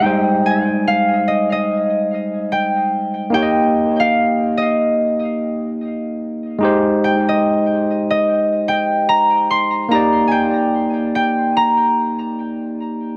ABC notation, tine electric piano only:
X:1
M:4/4
L:1/8
Q:"Swing 16ths" 1/4=73
K:Eb
V:1 name="Tine electric piano"
[G,A,Ec]8 | [B,EG_de]8 | [A,EGc]8 | [B,EGd]8 |]